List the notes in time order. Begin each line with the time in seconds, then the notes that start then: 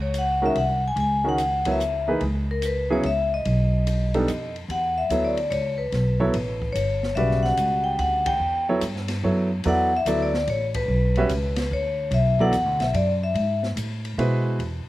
Already playing: C#2
0.02 C#5
0.14 hi-hat pedal, ride
0.18 F#5
0.42 D#3 G#3 C#4 F#4 A#4
0.46 E5
0.55 C2 F#5, ride
0.88 G#5
0.96 C#2, ride
1.00 G#5
1.24 D#3 G#3 C#4 F#4 A#4
1.29 F#5
1.38 hi-hat pedal, ride
1.65 F#3 B3 E4 A#4 C#5, kick, ride
1.72 E5
1.80 hi-hat pedal
2.08 E3 A#3 D#4 G#4 B4
2.21 C#2, ride
2.51 A#4
2.62 B4, hi-hat pedal, ride
2.90 C#3 F#3 B3 E4 G#4 C#5
3.03 C#2 E5, ride
3.34 D#5
3.45 B1, ride
3.87 hi-hat pedal, ride
4.14 G3 B3 D4 D#4 A4, ride
4.28 F2, hi-hat pedal, ride
4.56 ride
4.68 E2 F#5, ride
4.98 E5
5.09 D2 F#3 B3 E4 A4 C#5, hi-hat pedal, ride
5.25 D5
5.37 ride
5.51 C#2 C#5, ride
5.78 B4
5.92 B1, snare, ride
6.20 F#3 B3 E4 A4 C#5, kick
6.34 A1, ride
6.62 kick
6.72 G1 C#5, hi-hat pedal, ride
7.03 snare
7.15 B1 C#3 G3 F#4 B4 D5 E5, ride
7.31 snare
7.43 F#5, snare
7.57 C#2, hi-hat pedal, ride
7.84 G5
7.99 D2 F#5, ride
8.26 G5, kick, ride
8.39 E2
8.69 F#3 B3 E4 A4 C#5
8.81 G2, hi-hat pedal, ride
8.96 snare
9.08 snare, ride
9.23 F#2 F#3 B3 E4 A4 C#5
9.64 E2 F#3 B3 E4 A4 D5, ride
9.68 F#5
9.96 E5
10.05 D2 F#3 B3 E4 A4 D5, hi-hat pedal, ride
10.22 D5
10.34 snare
10.47 A1 C#5, ride
10.74 B4, kick, ride
10.88 B1
11.16 G3 C#4 F#4 B4 E5, ride
11.29 C#2, hi-hat pedal, ride
11.56 snare, ride
11.71 D2 C#5
12.11 B1 E5, ride
12.39 F#3 B3 E4 A4 D5 F#5, kick
12.52 E2, hi-hat pedal, ride
12.65 D2
12.79 B1 E5, snare, ride
12.93 F#2 D5, ride
13.23 E5
13.34 G#2, ride
13.63 snare
13.76 A2, hi-hat pedal, ride
14.05 ride
14.18 B2 G#3 E4 F#4 B4 C5, ride
14.59 E2, ride